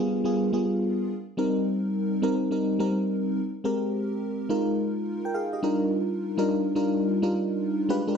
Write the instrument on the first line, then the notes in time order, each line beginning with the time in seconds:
fm electric piano
Already playing: G3 B3 D4 F4 G#4 A#4
0.24 G3 B3 F4 G#4
0.53 G3 B3 F4 G#4
1.37 G3 C4 D#4 A#4
2.22 G3 C4 D#4 A#4
2.51 G3 C4 D#4 A#4
2.79 G3 C4 D#4 A#4
3.64 G#3 C4 G4 A#4
4.49 G#3 D#4 F4 A#4
5.25 A#4 G5
5.34 G#4 F5
5.53 G4 D#5
5.63 G3 D4 D#4 F4 A#4
6.37 G3 D4 D#4 F4 A#4
6.75 G3 D4 D#4 F4 A#4
7.22 G3 D4 D#4 F4 A#4
7.89 G#3 D4 F4 G4 B4
8.07 G#3 D4 F4 G4 A#4